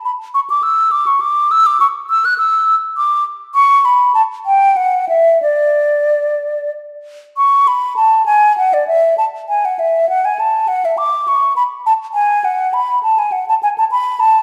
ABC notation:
X:1
M:3/4
L:1/16
Q:1/4=101
K:D
V:1 name="Flute"
b2 c' d' e'2 d' c' d'2 e' d' | c'2 e' f' e'3 z d'2 z2 | c'2 b2 a2 g2 f2 e2 | d8 z4 |
[K:A] c'2 b2 a2 g2 f d e2 | a2 g f e2 f g a2 f e | d'2 c'2 b2 a2 g2 f2 | b2 a g f a g a b2 a2 |]